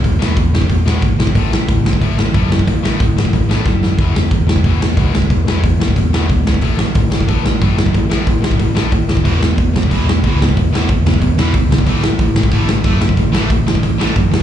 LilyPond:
<<
  \new Staff \with { instrumentName = "Distorted electric guitar" } { \clef bass \time 4/4 \key a \lydian \tempo 4 = 183 <e, b,>8 <e, b, e>8 <e, b,>8 <e, b,>8 <e, b,>8 <e, b, e>8 <e, b,>8 <e, b,>8 | <a, e a>8 <a, e>8 <a, e>8 <a, e>8 <a, e a>8 <a, e>8 <a, e a>8 <a, e>8 | <a, e>8 <a, e a>8 <a, e>8 <a, e>8 <a, e>8 <a, e a>8 <a, e>8 <a, e>8 | <e, b, e>8 <e, b,>8 <e, b,>8 <e, b,>8 <e, b, e>8 <e, b,>8 <e, b, e>8 <e, b,>8 |
<e, b,>8 <e, b, e>8 <e, b,>8 <e, b,>8 <e, b,>8 <e, b, e>8 <e, b,>8 <e, b,>8 | <a, e a>8 <a, e>8 <a, e>8 <a, e>8 <a, e a>8 <a, e>8 <a, e a>8 <a, e>8 | <a, e>8 <a, e a>8 <a, e>8 <a, e>8 <a, e>8 <a, e a>8 <a, e>8 <a, e>8 | <e, b, e>8 <e, b,>8 <e, b,>8 <e, b,>8 <e, b, e>8 <e, b,>8 <e, b, e>8 <e, b,>8 |
<e, b,>8 <e, b, e>8 <e, b,>8 <e, b,>8 <e, b,>8 <e, b, e>8 <e, b,>8 <e, b,>8 | <a, e a>8 <a, e>8 <a, e>8 <a, e>8 <a, e a>8 <a, e>8 <a, e a>8 <a, e>8 | <a, e>8 <a, e a>8 <a, e>8 <a, e>8 <a, e>8 <a, e a>8 <a, e>8 <a, e>8 | }
  \new Staff \with { instrumentName = "Distorted electric guitar" } { \clef bass \time 4/4 \key a \lydian r1 | r1 | r1 | r1 |
r1 | r1 | r1 | <e, b, e>8 <e, b,>8 <e, b,>8 <e, b,>8 <e, b, e>8 <e, b,>8 <e, b, e>8 <e, b,>8 |
<e, b,>8 <e, b, e>8 <e, b,>8 <e, b,>8 <e, b,>8 <e, b, e>8 <e, b,>8 <e, b,>8 | <a, e a>8 <a, e>8 <a, e>8 <a, e>8 <a, e a>8 <a, e>8 <a, e a>8 <a, e>8 | <a, e>8 <a, e a>8 <a, e>8 <a, e>8 <a, e>8 <a, e a>8 <a, e>8 <a, e>8 | }
  \new Staff \with { instrumentName = "Picked electric bass" } { \clef bass \time 4/4 \key a \lydian e,,8 e,,8 e,8 e,,8 e,,8 e,,8 gis,,4 | a,,8 a,,8 a,8 a,,8 a,,8 a,,8 fis,4 | a,,8 a,,8 a,8 a,,8 a,,8 a,,8 fis,4 | e,,8 e,,8 e,8 e,,8 e,,8 e,,8 cis,4 |
e,,8 e,,8 e,8 e,,8 e,,8 e,,8 cis,4 | a,,8 a,,8 a,8 a,,8 a,,8 a,,8 fis,4 | a,,8 a,,8 a,8 a,,8 a,,8 a,,8 dis,4 | e,,8 e,,8 e,8 e,,8 e,,8 e,,8 cis,4 |
e,,8 e,,8 e,8 e,,8 e,,8 e,,8 cis,4 | a,,8 a,,8 a,8 a,,8 a,,8 a,,8 fis,4 | a,,8 a,,8 a,8 a,,8 a,,8 a,,8 fis,4 | }
  \new DrumStaff \with { instrumentName = "Drums" } \drummode { \time 4/4 <hho bd>8 sn8 <hho bd>8 sn16 bd16 <hho bd>8 sn8 <hho bd>8 sn16 bd16 | <hho bd>8 sn8 <hho bd>8 sn16 bd16 <hho bd>8 sn8 <hho bd>8 sn16 bd16 | <hho bd>8 sn8 <hho bd>8 sn16 bd16 <hho bd>8 sn8 <bd sn>8 sn8 | <hho bd>8 sn8 <hho bd>8 sn16 bd16 <hho bd>8 sn8 <hho bd>8 sn16 bd16 |
<hho bd>8 sn8 <hho bd>8 sn16 bd16 <hho bd>8 sn8 <hho bd>8 sn16 bd16 | <hho bd>8 sn8 <hho bd>8 sn16 bd16 <hho bd>8 sn8 <hho bd>8 sn16 bd16 | <hho bd>8 sn8 <hho bd>8 sn16 bd16 <hho bd>8 sn8 <hho bd>8 sn16 bd16 | <hho bd>8 sn8 <hho bd>8 sn16 bd16 <hho bd>8 sn8 <hho bd>8 sn16 bd16 |
<hho bd>8 sn8 <hho bd>8 sn16 bd16 <hho bd>8 sn8 <hho bd>8 sn16 bd16 | <hho bd>8 sn8 <hho bd>8 sn16 bd16 <hho bd>8 sn8 <hho bd>8 sn16 bd16 | <hho bd>8 sn8 <hho bd>8 sn16 bd16 <hho bd>8 sn8 <hho bd>8 sn8 | }
>>